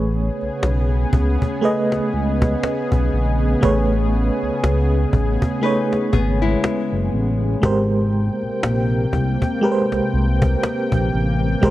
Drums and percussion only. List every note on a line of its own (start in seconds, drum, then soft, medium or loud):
0.12 cajon slap soft
0.41 cajon slap soft
0.63 cajon slap loud
0.91 cajon slap soft
1.13 cajon bass loud
1.42 cajon bass medium
1.63 cajon slap soft
1.92 cajon slap medium
2.13 cajon slap soft
2.42 cajon bass loud
2.63 cajon slap loud
2.92 cajon bass medium
3.63 cajon bass loud
3.92 cajon slap soft
4.13 cajon slap soft
4.42 cajon slap soft
4.64 cajon slap loud
4.92 cajon slap soft
5.13 cajon bass loud
5.42 cajon bass medium
5.63 cajon slap soft
5.93 cajon slap medium
6.13 cajon bass medium
6.64 cajon slap loud
6.92 cajon slap soft
7.63 cajon bass loud
7.92 cajon slap soft
8.12 cajon slap soft
8.42 cajon slap soft
8.63 cajon slap loud
8.91 cajon slap soft
9.13 cajon bass loud
9.42 cajon bass medium
9.63 cajon slap soft
9.92 cajon slap medium
10.13 cajon slap soft
10.42 cajon bass loud
10.63 cajon slap loud
10.92 cajon bass medium
11.63 cajon bass loud